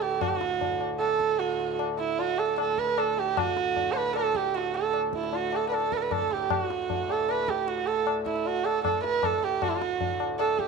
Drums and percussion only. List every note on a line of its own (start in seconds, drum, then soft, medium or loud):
0.02 tabla te soft
0.21 tabla na medium
0.21 tabla ge medium
0.41 tabla te medium
0.61 tabla tin medium
0.61 tabla ge medium
0.81 tabla na medium
1.01 tabla na medium
1.20 tabla ke medium
1.40 tabla te medium
1.60 tabla te soft
1.79 tabla na medium
1.99 tabla te soft
2.19 tabla tin medium
2.38 tabla na medium
2.58 tabla na medium
2.78 tabla ke medium
2.98 tabla na medium
3.17 tabla te soft
3.37 tabla na loud
3.37 tabla ge medium
3.57 tabla te medium
3.76 tabla tin medium
3.76 tabla ge medium
3.96 tabla na medium
4.16 tabla na medium
4.35 tabla ke medium
4.54 tabla te medium
4.74 tabla te medium
4.93 tabla na medium
5.13 tabla ke medium
5.23 tabla te medium
5.33 tabla tin medium
5.52 tabla na medium
5.72 tabla na medium
5.92 tabla ke medium
6.11 tabla na medium
6.11 tabla ge medium
6.31 tabla te medium
6.50 tabla na medium
6.50 tabla ge medium
6.70 tabla te medium
6.90 tabla tin medium
6.90 tabla ge medium
7.09 tabla na medium
7.29 tabla na medium
7.48 tabla ke medium
7.68 tabla te medium
7.87 tabla te medium
8.07 tabla na medium
8.26 tabla ke medium
8.36 tabla te medium
8.46 tabla tin medium
8.65 tabla na medium
8.85 tabla na medium
8.85 tabla ge medium
9.04 tabla te medium
9.23 tabla na medium
9.23 tabla ge medium
9.43 tabla te medium
9.62 tabla na medium
9.62 tabla ge medium
9.82 tabla te medium
10.01 tabla tin medium
10.01 tabla ge medium
10.20 tabla na medium
10.39 tabla na medium
10.59 tabla ke medium